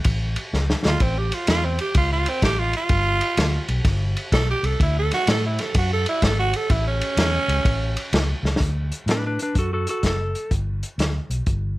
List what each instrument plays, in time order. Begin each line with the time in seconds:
0.04 fingered electric bass A1, kick, ride
0.36 ride
0.53 fingered electric bass C#2, snare
0.70 snare
0.85 fingered electric bass D2, tenor saxophone F4, snare
1.00 fingered electric bass A1, tenor saxophone C4, kick, ride
1.18 tenor saxophone G4
1.32 tenor saxophone F4, ride
1.47 fingered electric bass E2, tenor saxophone F4, snare, ride
1.65 tenor saxophone C4
1.79 tenor saxophone G4, ride
1.95 fingered electric bass C#2, tenor saxophone F4, kick, ride
2.12 tenor saxophone F4
2.26 tenor saxophone C4, ride
2.42 fingered electric bass A1, tenor saxophone G4, kick, snare, ride
2.60 tenor saxophone F4
2.73 tenor saxophone F4, ride
2.89 fingered electric bass G1, kick, ride
3.21 ride
3.37 fingered electric bass D2, snare, ride
3.68 fingered electric bass B1, ride
3.84 fingered electric bass G1, kick, snare, ride
4.17 ride
4.32 fingered electric bass B1, tenor saxophone A4, kick, snare, ride
4.51 tenor saxophone G4
4.63 fingered electric bass C2, tenor saxophone A4, ride
4.80 fingered electric bass D2, tenor saxophone E4, kick, ride
4.99 tenor saxophone A4
5.11 tenor saxophone F#4, snare, ride
5.27 fingered electric bass A2, tenor saxophone A4, snare, ride
5.46 tenor saxophone E4
5.59 tenor saxophone A4, snare, ride
5.74 fingered electric bass F#2, tenor saxophone F#4, kick, ride
5.93 tenor saxophone A4
6.06 tenor saxophone E4, ride
6.22 fingered electric bass G#1, tenor saxophone A4, kick, snare, ride
6.39 tenor saxophone F#4
6.53 tenor saxophone A4, ride
6.70 fingered electric bass A1, tenor saxophone E4, kick, ride
6.87 tenor saxophone C#4
7.01 ride
7.17 fingered electric bass E2, snare, ride
7.48 fingered electric bass C#2, ride
7.65 fingered electric bass A1, kick, ride
7.97 ride
8.13 fingered electric bass C#2, snare, ride
8.43 fingered electric bass C#2, snare
8.56 snare
8.60 fingered electric bass D2, kick, closed hi-hat
8.92 closed hi-hat
9.06 fingered electric bass A2, snare, closed hi-hat
9.11 electric slide guitar D4 B4
9.26 electric slide guitar D4 B4
9.39 electric slide guitar D4 B4, closed hi-hat
9.55 fingered electric bass F#2, electric slide guitar F#4 A4, kick, closed hi-hat
9.73 electric slide guitar F#4 A4
9.87 electric slide guitar F#4 A4, closed hi-hat
10.03 fingered electric bass F#1, electric slide guitar A4, kick, snare, closed hi-hat
10.35 closed hi-hat
10.51 fingered electric bass G1, kick, closed hi-hat
10.83 closed hi-hat
10.98 fingered electric bass D2, snare, closed hi-hat
11.30 fingered electric bass B1, closed hi-hat
11.46 fingered electric bass G1, kick, closed hi-hat